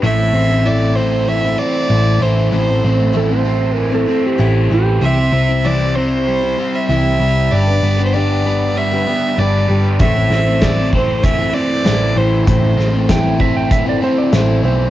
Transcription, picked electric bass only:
X:1
M:4/4
L:1/8
Q:1/4=96
K:Am
V:1 name="Picked electric bass" clef=bass
A,,, A,,,4 z A,,, A,,, | A,,, A,,,4 z A,,, A,,, | C,, C,,4 z C,, C,, | G,,, G,,,4 z G,,, G,,, |
A,,, A,,,4 z A,,, A,,, | A,,, A,,,4 z A,,, B,,, |]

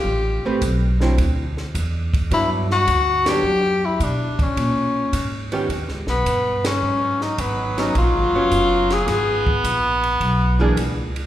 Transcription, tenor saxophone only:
X:1
M:4/4
L:1/8
Q:"Swing" 1/4=106
K:Ablyd
V:1 name="Tenor saxophone"
G2 z6 | _F ^F2 G2 _F D _D- | _D3 z2 =B,2 D- | _D E _C E F3 A- |
A2 z6 |]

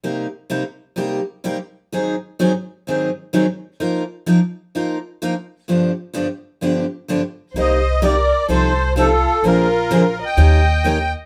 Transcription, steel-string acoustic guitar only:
X:1
M:4/4
L:1/8
Q:"Swing" 1/4=128
K:Cm
V:1 name="Steel-string acoustic guitar"
[C,G,B,EG] z [C,G,B,EG] z [C,G,B,EG] z [C,G,B,EG] z | [A,,E,_G,CEA] z [A,,E,G,CEA] z [A,,E,G,CEA] z [A,,E,G,CEA] z | [F,B,EFB] z [F,B,EFB] z [F,B,EFB] z [F,B,EFB] z | [G,,D,F,=B,DG] z [G,,D,F,B,DG] z [G,,D,F,B,DG] z [G,,D,F,B,DG] z |
[C,G,B,EG] z [C,G,B,EG] z [C,F,CE=A] z [C,F,CEA] z | [D,F,B,DA] z [D,F,B,DA] z [E,B,_DGB] z [E,B,DGB] z |]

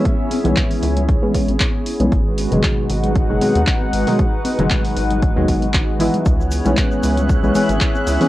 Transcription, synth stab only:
X:1
M:4/4
L:1/16
Q:"Swing 16ths" 1/4=116
K:C#m
V:1 name="Synth stab" clef=bass
z3 [E,G,B,C]6 [E,G,B,C] [E,G,B,C] z4 [E,G,B,C] | z3 [B,,D,F,G,]6 [B,,D,F,G,] [B,,D,F,G,] z4 [B,,D,F,G,] | z3 [B,,D,F,G,]6 [B,,D,F,G,] [B,,D,F,G,] z3 [E,G,B,E]2- | [E,G,B,E]3 [E,G,B,C]6 [E,G,B,C] [E,G,B,C] z4 [E,G,B,C] |]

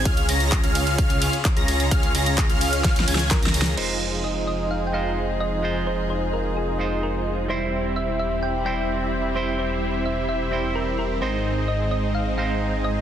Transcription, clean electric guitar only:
X:1
M:4/4
L:1/8
Q:1/4=129
K:Fm
V:1 name="Clean electric guitar"
z8 | z8 | [A,EFc]4- [A,EFc] [A,EFc]3 | [A,EFc]4- [A,EFc] [A,EFc]3 |
[G,C=Ec]4- [G,CEc] [G,CEc]3 | [G,C=Ec]4- [G,CEc] [G,CEc]3 | [A,,A,CEc]4- [A,,A,CEc] [A,,A,CEc]3 |]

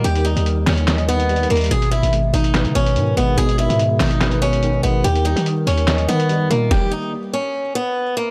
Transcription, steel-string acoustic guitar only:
X:1
M:4/4
L:1/8
Q:1/4=144
K:G#m
V:1 name="Steel-string acoustic guitar"
=G D z C2 B,2 A, | G E z D2 C2 B, | G E z D2 C2 B, | =G D z C2 B,2 A, |
=G D z C2 B,2 A, |]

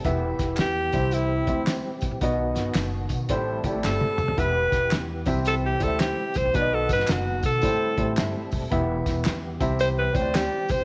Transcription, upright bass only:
X:1
M:4/4
L:1/16
Q:"Swing" 1/4=111
K:Em
V:1 name="Upright bass" clef=bass
E,,,2 E,,,2 E,,2 C,,4 D,,3 z C,, ^A,,, | B,,,2 G,,,2 F,,,2 B,,2 A,,,2 A,,,2 G,,, z E,,, ^D,,, | E,,,2 E,,,2 E,,2 C,,4 D,,3 z C,, ^A,,, | B,,,2 G,,,2 F,,,2 B,,2 A,,, z A,,,2 G,,, z E,,, ^D,,, |
E,,,2 E,,,2 E,,2 C,,4 D,,3 z C,, ^A,,, |]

